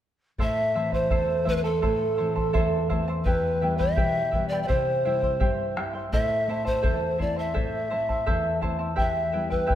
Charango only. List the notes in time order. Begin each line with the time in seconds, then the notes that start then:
0.39 E4 A4 C5 E5 A5
0.75 E4 C5 E5 A5
0.92 E4 C5 A5
1.10 E4 A4 C5 E5 A5
1.45 E4 C5 E5 A5
1.64 E4 C5 A5
1.82 E4 A4 C5 E5 A5
2.17 E4 C5 E5 A5
2.36 E4 C5 A5
2.53 E4 A4 C5 E5 A5
2.89 E4 C5 E5 A5
3.08 E4 C5 A5
3.26 E4 G4 B4 E5 G5
3.61 E4 B4 E5 G5
3.78 E4 B4 G5
3.96 E4 G4 B4 E5 G5
4.31 E4 B4 E5 G5
4.52 E4 B4 G5
4.67 E4 G4 C5 E5 G5
5.05 E4 C5 E5 G5
5.22 E4 C5 G5
5.40 E4 G4 C5 E5 G5
5.76 E4 C5 E5 G5
5.93 E4 C5 G5
6.13 E4 A4 C5 E5 A5
6.49 E4 C5 E5 A5
6.65 E4 C5 A5
6.82 E4 A4 C5 E5 A5
7.18 E4 C5 E5 A5
7.36 E4 C5 A5
7.54 E4 A4 C5 E5 A5
7.90 E4 C5 E5 A5
8.09 E4 C5 A5
8.26 E4 A4 C5 E5 A5
8.61 E4 C5 E5 A5
8.79 E4 C5 A5
8.96 E4 G4 B4 E5 G5
9.32 E4 B4 E5 G5
9.50 E4 B4 G5
9.66 E4 G4 B4 E5 G5